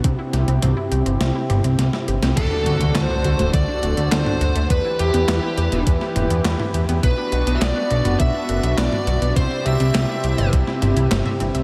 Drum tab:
CC |----------------|x---------------|----------------|----------------|
HH |x-xxx-xxx-xxx-xx|x-xxx-xxx-xxx-xx|x-xxx-xxx-xxx-xx|x-xxx-xxx-xxx-xx|
CP |----------------|----x-------x---|----x-------x---|----x-------x---|
SD |--o-----o---oo-o|----o-------o---|----o----o--o---|----o-------o---|
T2 |----o-----o-----|-------o-----o--|-------o--o--o--|-------o-----o--|
BD |o---------------|o-------o-------|o-------o-------|o-------o-------|

CC |----------------|
HH |x-xxx-xxx-xxx-xx|
CP |----x-------x---|
SD |----o----o--o---|
T2 |-------o--o--o--|
BD |o-------o-------|